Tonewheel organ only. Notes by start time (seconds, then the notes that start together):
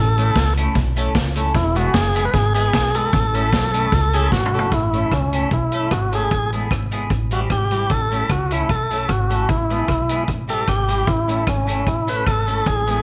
Already playing: A4
1.55 E4
1.76 F#4
1.94 G#4
2.25 B4
2.34 G#4
2.55 G#4
2.95 A4
4.14 G#4
4.32 F#4
4.74 E4
5.13 C#4
5.53 E4
5.92 F#4
6.15 G#4
7.33 F#4
7.52 G4
7.91 A4
8.31 F#4
8.52 E4
8.70 A4
9.08 F#4
9.49 E4
10.50 A4
10.69 G4
11.07 E4
11.49 C#4
11.88 E4
12.09 B4
12.27 A4
12.67 G#4